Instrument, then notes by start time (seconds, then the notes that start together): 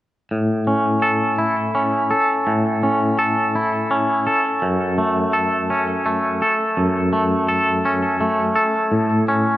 clean electric guitar
0.31 A2
0.67 C#4
1.02 A4
1.38 E4
1.75 C#4
2.11 A4
2.47 A2
2.83 C#4
3.19 A4
3.55 E4
3.91 C#4
4.27 A4
4.62 F#2
4.98 A3
5.33 A4
5.70 C#4
6.06 A3
6.42 A4
6.77 F#2
7.13 A3
7.48 A4
7.85 C#4
8.21 A3
8.56 A4
8.92 A2
9.28 C#4